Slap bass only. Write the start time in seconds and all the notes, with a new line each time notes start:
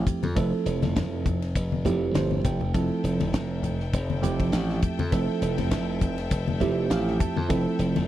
0.23 F2
0.37 F1
0.66 F1
0.82 F1
0.95 F1
1.56 F1
1.85 F1
2.14 G1
2.45 F1
2.74 F1
3.04 F1
3.20 F1
3.33 F1
3.93 F1
4.23 F1
4.52 A1
4.99 F2
5.12 F1
5.42 F1
5.58 F1
5.70 F1
6.31 F1
6.60 F1
6.90 A1
7.36 F2
7.50 F1
7.79 F1
7.96 F1